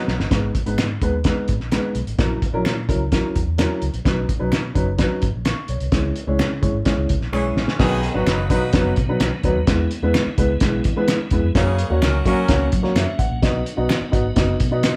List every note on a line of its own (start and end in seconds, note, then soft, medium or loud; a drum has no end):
0.00 0.29 F#3 medium
0.00 0.29 D#4 medium
0.00 0.29 B4 loud
0.08 0.17 B1 medium
0.08 snare medium
0.20 0.29 G1 medium
0.20 snare medium
0.31 0.49 G#1 loud
0.31 0.49 G#3 medium
0.31 0.48 B3 medium
0.31 0.49 D#4 medium
0.31 0.49 B4 medium
0.31 kick loud
0.31 snare loud
0.31 closed hi-hat medium
0.55 kick medium
0.55 closed hi-hat medium
0.66 0.75 G#1 medium
0.66 0.84 G#3 medium
0.66 0.84 B3 medium
0.66 0.84 D#4 medium
0.66 0.84 B4 medium
0.66 closed hi-hat soft
0.78 0.96 G#2 medium
0.78 finger snap medium
0.78 snare loud
0.78 closed hi-hat medium
1.01 1.28 D#2 medium
1.01 1.13 G#3 medium
1.01 1.13 B3 medium
1.01 1.13 D#4 medium
1.01 1.14 B4 medium
1.01 kick medium
1.01 closed hi-hat medium
1.24 1.48 G#3 medium
1.24 1.48 B3 medium
1.24 1.48 D#4 medium
1.24 1.49 B4 medium
1.24 kick medium
1.24 snare loud
1.24 closed hi-hat medium
1.48 1.60 G#1 medium
1.48 kick medium
1.48 closed hi-hat medium
1.60 1.78 A#1 medium
1.60 snare soft
1.71 1.95 G#3 medium
1.71 1.95 B3 medium
1.71 1.95 D#4 medium
1.71 1.95 B4 medium
1.71 finger snap medium
1.71 snare loud
1.71 closed hi-hat medium
1.95 2.04 B1 medium
1.95 closed hi-hat medium
2.07 2.16 A1 medium
2.07 closed hi-hat soft
2.18 2.37 A#1 loud
2.18 2.36 F#3 medium
2.18 2.36 C#4 medium
2.18 2.36 E4 medium
2.18 2.36 A#4 medium
2.18 kick loud
2.18 snare loud
2.18 closed hi-hat medium
2.42 kick medium
2.42 closed hi-hat medium
2.53 2.62 A#1 medium
2.53 2.71 F#3 medium
2.53 2.71 C#4 medium
2.53 2.71 E4 medium
2.53 2.71 A#4 loud
2.65 2.90 A#2 medium
2.65 finger snap loud
2.65 snare loud
2.65 closed hi-hat medium
2.88 3.16 C#2 medium
2.88 3.00 F#3 medium
2.88 3.00 C#4 medium
2.88 3.00 E4 medium
2.88 3.01 A#4 medium
2.88 kick medium
2.88 closed hi-hat medium
3.12 3.35 F#3 medium
3.12 3.35 C#4 medium
3.12 3.35 E4 medium
3.12 3.36 A#4 medium
3.12 kick medium
3.12 snare loud
3.12 closed hi-hat medium
3.35 3.45 E2 medium
3.35 kick medium
3.35 closed hi-hat medium
3.47 3.65 E2 medium
3.58 3.82 F#3 medium
3.58 3.82 C#4 medium
3.58 3.82 E4 medium
3.58 3.82 A#4 medium
3.58 finger snap medium
3.58 snare loud
3.58 closed hi-hat loud
3.82 3.91 C#2 medium
3.82 closed hi-hat medium
3.94 4.03 A#1 medium
3.94 closed hi-hat soft
4.05 4.23 B1 medium
4.05 4.23 F#3 medium
4.05 4.23 C#4 medium
4.05 4.23 D#4 medium
4.05 4.23 B4 medium
4.05 kick loud
4.05 snare loud
4.05 closed hi-hat medium
4.29 kick medium
4.29 closed hi-hat medium
4.39 4.53 B1 medium
4.39 4.58 F#3 medium
4.39 4.58 C#4 medium
4.39 4.58 D#4 medium
4.39 4.58 B4 medium
4.52 4.70 B2 loud
4.52 finger snap medium
4.52 snare loud
4.52 closed hi-hat medium
4.75 5.03 F#1 medium
4.75 4.87 F#3 medium
4.75 4.87 C#4 medium
4.75 4.87 D#4 medium
4.75 4.87 B4 medium
4.75 kick medium
4.75 closed hi-hat medium
4.98 5.22 F#3 medium
4.98 5.22 C#4 medium
4.98 5.22 D#4 medium
4.98 5.22 B4 medium
4.98 kick loud
4.98 snare loud
4.98 closed hi-hat medium
5.22 5.32 G#1 medium
5.22 kick medium
5.22 closed hi-hat medium
5.34 5.52 A#1 medium
5.45 5.68 C#6 medium
5.45 finger snap medium
5.45 snare loud
5.45 closed hi-hat loud
5.68 5.78 B1 medium
5.68 5.91 C#5 medium
5.68 closed hi-hat medium
5.80 5.90 C2 medium
5.80 closed hi-hat soft
5.92 6.10 G#3 medium
5.92 6.10 C#4 medium
5.92 6.10 E4 medium
5.92 6.10 C#5 medium
5.92 kick loud
5.92 snare loud
5.92 closed hi-hat medium
6.16 closed hi-hat medium
6.27 6.41 C#2 medium
6.27 6.45 G#3 medium
6.27 6.45 C#4 medium
6.27 6.45 E4 medium
6.27 6.45 C#5 medium
6.39 6.64 C#3 medium
6.39 finger snap loud
6.39 snare loud
6.39 closed hi-hat medium
6.62 6.81 G#1 medium
6.62 6.74 G#3 medium
6.62 6.74 C#4 medium
6.62 6.74 E4 medium
6.62 6.74 C#5 medium
6.62 kick medium
6.62 closed hi-hat medium
6.85 6.96 E3 medium
6.85 7.09 G#3 medium
6.85 7.09 C#4 medium
6.85 6.96 C#4 medium
6.85 7.09 E4 medium
6.85 6.96 G#4 medium
6.85 7.10 C#5 medium
6.85 kick loud
6.85 snare loud
6.85 closed hi-hat medium
6.98 7.07 C#2 medium
7.09 7.19 C#2 medium
7.09 kick medium
7.09 closed hi-hat medium
7.21 7.30 A#1 medium
7.21 snare soft
7.32 7.51 B1 medium
7.32 7.78 E3 medium
7.32 7.57 G#3 medium
7.32 7.57 C#4 medium
7.32 7.78 C#4 medium
7.32 7.57 E4 medium
7.32 7.78 G#4 loud
7.32 7.57 C#5 medium
7.32 finger snap medium
7.56 7.65 A#1 medium
7.56 snare medium
7.68 snare medium
7.79 8.07 B1 medium
7.79 8.12 D#3 loud
7.79 9.65 D#3 medium
7.79 7.97 F#3 medium
7.79 9.65 F#3 medium
7.79 7.97 B3 medium
7.79 8.13 B3 loud
7.79 11.51 B3 medium
7.79 7.97 D#4 medium
7.79 8.12 G#4 loud
7.79 7.98 B4 medium
7.79 kick loud
7.79 snare loud
7.79 crash medium
8.03 closed hi-hat medium
8.14 8.24 G#1 medium
8.14 8.24 D#3 medium
8.14 8.32 F#3 medium
8.14 8.33 B3 medium
8.14 8.24 B3 medium
8.14 8.32 D#4 medium
8.14 8.24 F#4 medium
8.14 8.33 B4 medium
8.26 8.51 F#1 medium
8.26 8.45 F#3 medium
8.26 8.45 D#4 medium
8.26 8.45 B4 medium
8.26 finger snap medium
8.26 snare loud
8.26 closed hi-hat medium
8.50 8.75 B2 medium
8.50 8.62 F#3 medium
8.50 8.94 F#3 medium
8.50 8.62 B3 medium
8.50 8.94 D#4 medium
8.50 8.62 D#4 medium
8.50 8.94 B4 medium
8.50 8.62 B4 medium
8.50 kick medium
8.50 closed hi-hat medium
8.73 8.92 F#1 medium
8.73 8.91 F#3 medium
8.73 8.91 B3 medium
8.73 8.92 D#4 medium
8.73 8.92 B4 loud
8.73 kick medium
8.73 snare loud
8.73 closed hi-hat medium
8.96 9.16 B2 medium
8.96 kick medium
8.96 closed hi-hat medium
9.08 9.26 F#3 medium
9.08 9.27 B3 medium
9.08 9.27 D#4 medium
9.08 9.27 B4 loud
9.20 9.30 B1 medium
9.20 finger snap medium
9.20 snare loud
9.20 closed hi-hat loud
9.43 9.53 D2 medium
9.43 9.56 F#3 medium
9.43 9.56 B3 medium
9.43 9.56 D#4 medium
9.43 9.56 B4 medium
9.43 kick medium
9.43 closed hi-hat medium
9.56 9.65 D#2 medium
9.66 9.85 E2 loud
9.66 11.53 E3 medium
9.66 11.53 G#3 medium
9.66 9.85 G#3 medium
9.66 9.85 B3 medium
9.66 9.85 E4 medium
9.66 9.85 B4 medium
9.66 kick loud
9.66 snare loud
9.66 closed hi-hat medium
9.91 closed hi-hat medium
10.02 10.12 E2 loud
10.02 10.20 G#3 medium
10.02 10.21 B3 medium
10.02 10.21 E4 medium
10.02 10.21 B4 medium
10.14 finger snap loud
10.14 snare loud
10.14 closed hi-hat medium
10.26 muted fingered electric bass stroke soft
10.38 10.56 C#2 medium
10.38 10.50 G#3 medium
10.38 10.50 B3 medium
10.38 10.50 E4 medium
10.38 10.50 B4 medium
10.38 kick medium
10.38 closed hi-hat medium
10.60 10.79 B1 medium
10.60 10.79 G#3 medium
10.60 10.79 B3 medium
10.60 10.79 E4 medium
10.60 10.79 B4 medium
10.60 kick medium
10.60 snare loud
10.60 closed hi-hat medium
10.84 11.12 E3 medium
10.84 kick medium
10.84 closed hi-hat medium
10.96 11.14 G#3 medium
10.96 11.14 B3 medium
10.96 11.14 E4 medium
10.96 11.14 B4 loud
11.08 finger snap medium
11.08 snare loud
11.08 closed hi-hat loud
11.31 11.40 E2 medium
11.31 11.44 G#3 medium
11.31 11.44 B3 medium
11.31 11.44 E4 medium
11.31 11.44 B4 medium
11.31 kick medium
11.31 closed hi-hat medium
11.43 11.52 F2 medium
11.55 11.82 F#2 loud
11.55 11.89 C#3 loud
11.55 14.96 F#3 medium
11.55 13.41 A#3 medium
11.55 11.73 A#3 medium
11.55 11.89 A#3 loud
11.55 13.41 C#4 medium
11.55 11.73 C#4 medium
11.55 11.73 F#4 medium
11.55 11.89 G#4 loud
11.55 11.73 C#5 medium
11.55 kick loud
11.55 snare loud
11.55 closed hi-hat medium
11.78 closed hi-hat medium
11.90 11.99 D#2 medium
11.90 12.00 C#3 medium
11.90 12.08 A#3 medium
11.90 11.99 A#3 medium
11.90 12.08 C#4 medium
11.90 11.99 F#4 medium
11.90 12.08 F#4 medium
11.90 12.08 C#5 loud
12.02 12.20 C#2 loud
12.02 12.21 F#3 medium
12.02 12.21 C#4 medium
12.02 12.21 A#4 loud
12.02 finger snap medium
12.02 snare loud
12.02 closed hi-hat medium
12.25 12.43 F#3 medium
12.25 12.70 F#3 loud
12.25 12.37 A#3 medium
12.25 12.37 C#4 medium
12.25 12.70 C#4 loud
12.25 12.37 F#4 medium
12.25 12.70 A#4 loud
12.25 12.37 C#5 medium
12.25 kick medium
12.25 closed hi-hat medium
12.48 12.67 C#2 loud
12.48 12.66 A#3 medium
12.48 12.66 C#4 medium
12.48 12.67 F#4 medium
12.48 12.67 C#5 medium
12.48 kick loud
12.48 snare loud
12.48 closed hi-hat medium
12.72 12.91 F#3 medium
12.72 kick medium
12.72 closed hi-hat medium
12.83 13.01 A#3 medium
12.83 13.01 C#4 medium
12.83 13.01 F#4 medium
12.83 13.01 C#5 medium
12.83 snare soft
12.95 13.04 F#2 medium
12.95 13.18 E5 medium
12.95 finger snap medium
12.95 snare loud
12.95 closed hi-hat loud
13.19 13.28 A1 medium
13.19 13.64 F#5 medium
13.19 kick medium
13.19 closed hi-hat medium
13.30 13.40 A#1 medium
13.42 13.61 B1 loud
13.42 13.60 B3 medium
13.42 14.96 B3 medium
13.42 13.60 D#4 medium
13.42 14.96 D#4 medium
13.42 13.60 F#4 medium
13.42 13.60 D#5 medium
13.42 kick loud
13.42 snare loud
13.42 closed hi-hat medium
13.66 closed hi-hat medium
13.77 13.87 B1 medium
13.77 13.95 B3 medium
13.77 13.95 D#4 medium
13.77 13.95 F#4 medium
13.77 13.95 D#5 medium
13.89 finger snap loud
13.89 snare loud
13.89 closed hi-hat medium
14.01 muted fingered electric bass stroke soft
14.11 14.31 G#1 medium
14.11 14.24 B3 medium
14.11 14.24 D#4 medium
14.11 14.24 F#4 medium
14.11 14.24 D#5 medium
14.11 kick medium
14.11 closed hi-hat medium
14.36 14.54 F#1 medium
14.36 14.54 B3 medium
14.36 14.54 D#4 medium
14.36 14.54 F#4 medium
14.36 14.54 D#5 medium
14.36 kick loud
14.36 snare loud
14.36 closed hi-hat medium
14.60 14.87 B2 medium
14.60 kick medium
14.60 closed hi-hat medium
14.71 14.89 B3 medium
14.71 14.89 D#4 medium
14.71 14.89 F#4 medium
14.71 14.82 D#5 medium
14.83 14.96 D#5 medium
14.83 finger snap medium
14.83 snare loud
14.83 closed hi-hat medium